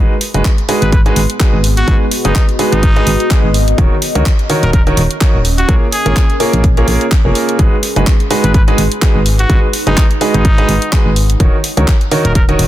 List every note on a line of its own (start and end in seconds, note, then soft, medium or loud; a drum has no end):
0.00 0.13 G#3 medium
0.00 3.78 B3 medium
0.00 0.13 D#4 medium
0.00 0.13 F#4 medium
0.00 0.13 G#4 medium
0.00 0.13 B4 medium
0.10 5.69 F#4 medium
0.21 open hi-hat loud
0.29 4.55 G#4 medium
0.34 0.42 F#1 medium
0.34 0.47 G#3 medium
0.34 0.47 D#4 medium
0.34 0.47 F#4 medium
0.34 0.47 G#4 medium
0.34 0.47 B4 medium
0.34 closed hi-hat medium
0.45 kick loud
0.45 clap loud
0.45 closed hi-hat medium
0.58 closed hi-hat soft
0.69 0.91 G#3 medium
0.69 0.91 D#4 medium
0.69 0.91 F#4 medium
0.69 0.91 G#4 medium
0.69 0.91 B4 medium
0.69 open hi-hat medium
0.82 1.12 G#1 medium
0.82 0.89 B4 medium
0.82 closed hi-hat medium
0.92 1.01 B4 medium
0.92 kick loud
0.92 closed hi-hat medium
1.06 1.19 G#3 medium
1.06 1.19 D#4 medium
1.06 1.19 F#4 medium
1.06 1.19 G#4 medium
1.06 1.19 B4 loud
1.06 closed hi-hat soft
1.16 1.26 G#1 medium
1.16 6.45 D#5 medium
1.16 open hi-hat loud
1.30 closed hi-hat soft
1.40 1.55 G#3 medium
1.40 1.55 D#4 medium
1.40 1.55 F#4 medium
1.40 1.55 G#4 medium
1.40 1.55 B4 medium
1.40 kick loud
1.40 clap loud
1.40 closed hi-hat medium
1.53 1.84 G#1 medium
1.64 open hi-hat medium
1.77 1.98 F#4 medium
1.77 closed hi-hat medium
1.88 1.98 G#1 medium
1.88 2.03 G#3 medium
1.88 2.03 D#4 medium
1.88 2.03 F#4 medium
1.88 2.03 G#4 medium
1.88 2.03 B4 medium
1.88 kick loud
1.88 closed hi-hat medium
2.11 open hi-hat loud
2.25 2.33 F#1 medium
2.25 2.38 G#3 medium
2.25 2.38 D#4 medium
2.25 2.46 D#4 medium
2.25 2.38 F#4 medium
2.25 2.38 G#4 medium
2.25 2.38 B4 medium
2.25 closed hi-hat soft
2.35 kick loud
2.35 clap loud
2.35 closed hi-hat medium
2.49 closed hi-hat soft
2.59 2.82 G#3 medium
2.59 2.82 D#4 medium
2.59 2.82 F#4 medium
2.59 2.82 G#4 medium
2.59 2.82 B4 loud
2.59 open hi-hat medium
2.72 3.03 G#1 loud
2.72 3.39 D#4 medium
2.72 closed hi-hat medium
2.83 kick loud
2.83 closed hi-hat medium
2.96 3.09 G#3 medium
2.96 3.09 D#4 medium
2.96 3.09 F#4 medium
2.96 3.09 G#4 medium
2.96 3.09 B4 loud
2.96 closed hi-hat soft
3.07 3.17 G#1 medium
3.07 open hi-hat loud
3.20 closed hi-hat medium
3.30 3.46 G#3 medium
3.30 3.46 D#4 medium
3.30 3.46 F#4 medium
3.30 3.46 G#4 medium
3.30 3.46 B4 medium
3.30 kick loud
3.30 clap loud
3.30 closed hi-hat medium
3.44 3.74 G#1 medium
3.54 open hi-hat medium
3.68 closed hi-hat medium
3.78 3.88 D#1 loud
3.78 3.93 D#3 medium
3.78 8.53 C#4 medium
3.78 3.93 D#4 medium
3.78 3.93 F#4 medium
3.78 3.93 A#4 medium
3.78 3.93 C#5 medium
3.78 kick loud
3.78 closed hi-hat medium
4.02 open hi-hat loud
4.15 4.23 C#2 medium
4.15 4.28 D#3 medium
4.15 4.28 D#4 medium
4.15 4.28 F#4 medium
4.15 4.28 A#4 medium
4.15 4.28 C#5 medium
4.15 closed hi-hat soft
4.26 7.59 A#4 medium
4.26 kick loud
4.26 clap loud
4.26 closed hi-hat medium
4.39 closed hi-hat soft
4.50 4.72 D#3 medium
4.50 4.72 D#4 medium
4.50 4.72 F#4 medium
4.50 4.72 A#4 medium
4.50 4.72 C#5 loud
4.50 open hi-hat medium
4.63 4.93 D#1 loud
4.63 4.70 A#4 medium
4.63 closed hi-hat medium
4.73 4.82 A#4 medium
4.73 kick loud
4.73 closed hi-hat medium
4.87 5.00 D#3 medium
4.87 5.00 D#4 medium
4.87 5.00 F#4 medium
4.87 5.00 A#4 medium
4.87 5.00 C#5 loud
4.87 closed hi-hat soft
4.97 5.07 D#1 medium
4.97 open hi-hat loud
5.11 closed hi-hat soft
5.21 5.36 D#3 medium
5.21 5.36 D#4 medium
5.21 5.36 F#4 medium
5.21 5.36 A#4 medium
5.21 5.36 C#5 loud
5.21 kick loud
5.21 clap loud
5.21 closed hi-hat medium
5.34 5.65 D#1 medium
5.45 open hi-hat medium
5.58 5.74 F#4 medium
5.58 closed hi-hat soft
5.69 5.79 A#1 loud
5.69 5.84 A#3 medium
5.69 5.84 F4 medium
5.69 5.84 G#4 medium
5.69 5.84 A#4 medium
5.69 5.84 C#5 medium
5.69 kick loud
5.69 closed hi-hat medium
5.82 12.17 G#4 medium
5.92 6.40 G#4 medium
5.92 open hi-hat loud
6.06 6.14 G#1 medium
6.06 6.19 A#3 medium
6.06 6.19 F4 medium
6.06 6.19 G#4 medium
6.06 6.19 A#4 medium
6.06 6.19 C#5 medium
6.06 closed hi-hat soft
6.16 kick loud
6.16 clap loud
6.16 closed hi-hat medium
6.30 closed hi-hat soft
6.40 6.63 A#3 medium
6.40 6.63 F4 medium
6.40 6.63 G#4 medium
6.40 6.63 A#4 medium
6.40 6.63 C#5 loud
6.40 open hi-hat medium
6.53 6.84 A#1 loud
6.53 closed hi-hat soft
6.64 kick loud
6.64 closed hi-hat medium
6.77 6.86 A#3 medium
6.77 6.86 F4 medium
6.77 6.86 G#4 medium
6.77 6.86 A#4 medium
6.77 6.86 C#5 loud
6.77 closed hi-hat soft
6.88 6.98 A#1 medium
6.88 7.03 A#3 medium
6.88 7.03 F4 medium
6.88 7.03 G#4 medium
6.88 7.03 A#4 medium
6.88 7.03 C#5 medium
6.88 open hi-hat loud
7.01 closed hi-hat soft
7.11 kick loud
7.11 clap loud
7.11 closed hi-hat medium
7.25 7.33 F1 medium
7.25 7.57 A#3 medium
7.25 7.57 F4 medium
7.25 7.57 G#4 medium
7.25 7.57 A#4 medium
7.25 7.57 C#5 medium
7.35 open hi-hat medium
7.49 closed hi-hat soft
7.59 7.69 G#1 loud
7.59 7.74 G#3 medium
7.59 12.68 D#4 medium
7.59 7.74 D#4 medium
7.59 7.74 F#4 medium
7.59 7.74 G#4 medium
7.59 7.74 B4 medium
7.59 kick loud
7.59 closed hi-hat medium
7.83 open hi-hat loud
7.92 11.40 B4 medium
7.96 8.04 F#1 medium
7.96 8.09 G#3 medium
7.96 8.09 D#4 medium
7.96 8.09 F#4 medium
7.96 8.09 G#4 medium
7.96 8.09 B4 medium
7.96 closed hi-hat soft
8.07 kick loud
8.07 clap loud
8.07 closed hi-hat medium
8.20 closed hi-hat soft
8.31 8.53 G#3 medium
8.31 8.53 D#4 medium
8.31 8.53 F#4 medium
8.31 8.53 G#4 medium
8.31 8.53 B4 medium
8.31 open hi-hat medium
8.44 8.74 G#1 loud
8.44 8.51 B4 medium
8.44 closed hi-hat medium
8.50 12.68 F#5 medium
8.54 8.63 B4 medium
8.54 kick loud
8.54 closed hi-hat medium
8.68 8.81 G#3 medium
8.68 8.81 D#4 medium
8.68 8.81 F#4 medium
8.68 8.81 G#4 medium
8.68 8.81 B4 loud
8.68 closed hi-hat soft
8.78 8.88 G#1 medium
8.78 open hi-hat loud
8.92 closed hi-hat soft
9.02 9.17 G#3 medium
9.02 9.17 D#4 medium
9.02 9.17 F#4 medium
9.02 9.17 G#4 medium
9.02 9.17 B4 loud
9.02 kick loud
9.02 clap loud
9.02 closed hi-hat medium
9.15 9.46 G#1 medium
9.26 open hi-hat medium
9.39 9.60 F#4 medium
9.39 closed hi-hat soft
9.50 9.60 G#1 loud
9.50 9.65 G#3 medium
9.50 9.65 D#4 medium
9.50 9.65 F#4 medium
9.50 9.65 G#4 medium
9.50 9.65 B4 medium
9.50 kick loud
9.50 closed hi-hat medium
9.73 open hi-hat loud
9.87 9.95 F#1 medium
9.87 10.00 G#3 medium
9.87 10.07 D#4 medium
9.87 10.00 D#4 medium
9.87 10.00 F#4 medium
9.87 10.00 G#4 medium
9.87 10.00 B4 medium
9.87 closed hi-hat medium
9.97 kick loud
9.97 clap loud
9.97 closed hi-hat medium
10.11 closed hi-hat soft
10.21 10.44 G#3 medium
10.21 10.44 D#4 medium
10.21 10.44 F#4 medium
10.21 10.44 G#4 medium
10.21 10.44 B4 loud
10.21 open hi-hat medium
10.34 10.65 G#1 loud
10.34 11.00 D#4 medium
10.34 closed hi-hat medium
10.45 kick loud
10.45 closed hi-hat medium
10.58 10.71 G#3 medium
10.58 10.71 D#4 medium
10.58 10.71 F#4 medium
10.58 10.71 G#4 medium
10.58 10.71 B4 loud
10.58 closed hi-hat soft
10.69 10.79 G#1 medium
10.69 open hi-hat loud
10.82 closed hi-hat soft
10.92 11.08 G#3 medium
10.92 11.08 D#4 medium
10.92 11.08 F#4 medium
10.92 11.08 G#4 medium
10.92 11.08 B4 loud
10.92 kick loud
10.92 clap loud
10.92 closed hi-hat medium
11.06 11.36 G#1 medium
11.16 open hi-hat medium
11.30 closed hi-hat medium
11.40 11.50 D#1 loud
11.40 11.55 D#3 medium
11.40 11.55 D#4 medium
11.40 11.55 F#4 medium
11.40 11.55 A#4 medium
11.40 11.55 C#5 medium
11.40 kick loud
11.40 closed hi-hat medium
11.64 open hi-hat loud
11.74 11.85 C#2 medium
11.74 11.90 D#3 medium
11.74 11.90 D#4 medium
11.74 11.90 F#4 medium
11.74 12.68 A#4 medium
11.74 11.90 A#4 medium
11.74 11.90 C#5 medium
11.74 closed hi-hat medium
11.88 kick loud
11.88 clap loud
11.88 closed hi-hat medium
12.01 closed hi-hat soft
12.11 12.34 D#3 medium
12.11 12.34 D#4 medium
12.11 12.34 F#4 medium
12.11 12.34 A#4 medium
12.11 12.34 C#5 loud
12.11 open hi-hat medium
12.25 12.55 D#1 loud
12.25 12.32 A#4 medium
12.25 closed hi-hat medium
12.35 12.44 A#4 medium
12.35 kick loud
12.35 closed hi-hat medium
12.49 12.62 D#3 medium
12.49 12.62 D#4 medium
12.49 12.62 F#4 medium
12.49 12.62 A#4 medium
12.49 12.62 C#5 loud
12.49 closed hi-hat soft
12.59 12.68 D#1 medium
12.59 open hi-hat loud